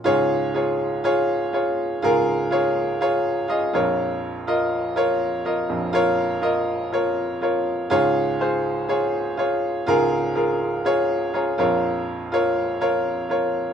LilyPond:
<<
  \new Staff \with { instrumentName = "Grand piano" } { \time 4/4 \key des \major \tempo 4 = 122 << { r1 | r1 | r1 | r1 |
r1 | r2. bes''4 | r1 | } \\ { <f' aes' des''>4 <f' aes' des''>4 <f' aes' des''>4 <f' aes' des''>4 | <f' aes' bes'>4 <f' aes' des''>4 <f' aes' des''>4 <f' aes' ees''>8 <f' bes' des''>8~ | <f' bes' des''>8 r8 <f' bes' ees''>4 <f' bes' des''>4 <f' bes' ees''>4 | <f' bes' des''>4 <f' bes' ees''>4 <f' bes' des''>4 <f' bes' des''>4 |
<f' aes' des''>4 <f' aes' c''>4 <f' aes' des''>4 <f' aes' des''>4 | <f' aes' bes'>4 <f' aes' bes'>4 <f' aes' des''>4 <f' aes' des''>8 <f' bes' des''>8~ | <f' bes' des''>8 r8 <f' bes' des''>4 <f' bes' des''>4 <f' bes' des''>4 | } >> }
  \new Staff \with { instrumentName = "Grand piano" } { \clef bass \time 4/4 \key des \major <des, aes,>1 | <des, aes,>2.~ <des, aes,>8 <bes,, f,>8~ | <bes,, f,>2.~ <bes,, f,>8 <bes,, f,>8~ | <bes,, f,>2.~ <bes,, f,>8 r8 |
<des, aes,>1 | <des, aes,>2.~ <des, aes,>8 <bes,, f,>8~ | <bes,, f,>2.~ <bes,, f,>8 r8 | }
>>